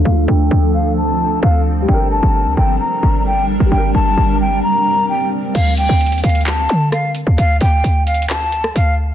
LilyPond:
<<
  \new Staff \with { instrumentName = "Flute" } { \time 4/4 \key d \minor \tempo 4 = 131 f''8 g''4 f''8 a''4 f''8 r8 | g''8 a''4 g''8 bes''4 g''8 r8 | g''8 a''4 g''8 bes''4 g''8 r8 | f''8 g''4 f''8 a''4 f''8 r8 |
f''8 g''4 f''8 a''4 f''8 r8 | }
  \new Staff \with { instrumentName = "Grand piano" } { \time 4/4 \key d \minor <d a f'>1 | <g d' bes'>1 | <g d' bes'>1 | r1 |
r1 | }
  \new Staff \with { instrumentName = "Ambient pad" } { \time 4/4 \key d \minor << { <f a'>1 | <g bes'>1~ | <g bes'>1 | r1 |
r1 | } \\ { c'1 | d'1 | c'1 | r1 |
r1 | } >> }
  \new Staff \with { instrumentName = "808-style bass" } { \clef bass \time 4/4 \key d \minor d,8 d,8 d,2 d,4 | g,,8. g,,8 d,16 g,,8 r8 g,,4~ g,,16 g,,16 | g,,8 g,,8 g,,4 r2 | d,8. d,8 ees,16 d,4 d4~ d16 d,16 |
d,8 d,8 d,2 d,4 | }
  \new DrumStaff \with { instrumentName = "Drums" } \drummode { \time 4/4 r4 r4 r4 r4 | r4 r4 r4 r4 | r4 r4 r4 r4 | <cymc hh>8 hh8 hh32 hh32 hh32 hh32 hh32 hh32 hh32 hh32 <hc hh>8 hh8 <hh ss>8 hh8 |
hh8 hh8 \tuplet 3/2 { hh16 r16 r16 hh16 hh16 hh16 } <hc hh>8 hh16 ss16 hh4 | }
>>